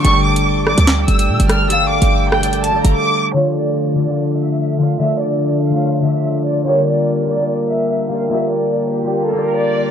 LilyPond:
<<
  \new Staff \with { instrumentName = "Violin section" } { \time 4/4 \key d \minor \tempo 4 = 145 cis'''8 d'''4 d'''4 e'''4 f'''8 | e'''8 d'''4 g''8. a''8 bes''16 d'''4 | cis''8 d''4 d''4 e''4 f''8 | e''8 d''4 f''4 e''4 d''8 |
cis''8 d''4 d''4 e''4 f''8 | e''8 d''4 g'8. a'8 bes'16 d''4 | }
  \new Staff \with { instrumentName = "Harp" } { \time 4/4 \key d \minor <g g' a' d''>4 r8 <g g' a' d''>16 <g g' a' d''>4~ <g g' a' d''>16 r8 <g g' a' d''>16 r16 | <g g' a' f''>4~ <g g' a' f''>16 r8 <g g' a' d''>8 r16 <g g' a' d''>4 r8 | <d a f' d''>4 r8 <d a f' d''>16 <d a f' d''>4~ <d a f' d''>16 r8 <d a f' d''>16 r16 | <d a f' d''>4~ <d a f' d''>16 r8 <d a f' cis''>8 r16 <d a f' d''>4 r8 |
<bes f' g' d''>4 r8 <bes f' g' d''>16 <bes f' g' d''>4~ <bes f' g' d''>16 r8 <bes f' g' d''>16 r16 | <bes f' g' d''>4~ <bes f' g' d''>16 r8 <bes f' g' d''>8 r16 <bes f' g' d''>4 r8 | }
  \new Staff \with { instrumentName = "Pipe organ" } { \clef bass \time 4/4 \key d \minor <d g a g'>1~ | <d g a g'>1 | <d f a f'>1~ | <d f a f'>1 |
<d g bes f'>1~ | <d g bes f'>1 | }
  \new Staff \with { instrumentName = "808-style bass" } { \clef bass \time 4/4 \key d \minor g,,4.~ g,,16 d,8. g,,8 bes,16 g,,8.~ | g,,8. g,,2 g,,16 r4 | r1 | r1 |
r1 | r1 | }
  \new DrumStaff \with { instrumentName = "Drums" } \drummode { \time 4/4 hh8. hh16 r8 ss16 hh16 <hc sn>8 hh16 hh16 r16 hh16 <hh ss>8 | hh8. hh16 r8 ss16 hh16 hh16 hh8 hh16 r4 | r4 r4 r4 r4 | r4 r4 r4 r4 |
r4 r4 r4 r4 | r4 r4 r4 r4 | }
>>